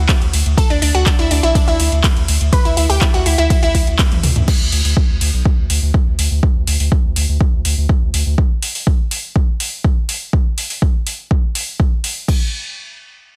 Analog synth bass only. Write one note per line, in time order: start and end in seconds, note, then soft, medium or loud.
0.21 0.30 D2 medium
0.33 0.42 D2 loud
0.46 0.54 D2 loud
0.70 0.79 D2 medium
0.82 0.91 D2 loud
0.95 1.03 D2 loud
1.19 1.27 D2 medium
1.31 1.40 D2 loud
1.43 1.52 B1 loud
1.68 1.76 D2 medium
1.80 1.89 D2 medium
1.92 2.01 D2 medium
2.16 2.25 D2 medium
2.28 2.37 D2 loud
2.41 2.49 D2 loud
2.65 2.74 D2 medium
2.77 2.86 D2 loud
2.90 2.98 D2 medium
3.14 3.23 D2 medium
3.26 3.35 D2 loud
3.38 3.47 D2 medium
3.63 3.71 D2 medium
3.75 3.84 D2 loud
3.87 3.96 D2 medium
4.12 4.20 D2 medium
4.23 4.32 D2 medium
4.36 4.45 D2 loud
4.60 4.69 D2 medium
4.72 4.81 D2 loud
4.85 4.93 D2 medium
5.09 5.18 D2 medium
5.21 5.30 D2 loud
5.34 5.42 B1 medium
5.58 5.67 D2 medium
5.70 5.79 D2 loud
5.82 5.91 D2 medium
6.07 6.15 D2 medium
6.19 6.28 D2 loud
6.31 6.40 D2 medium
6.56 6.64 D2 medium
6.67 6.76 D2 loud
6.80 6.88 D2 medium
7.04 7.13 D2 medium
7.16 7.25 D2 loud
7.29 7.37 D2 medium
7.53 7.62 D2 medium
7.65 7.74 D2 loud
7.78 7.86 D2 medium
8.02 8.11 D2 medium
8.14 8.23 D2 medium
8.26 8.35 D2 loud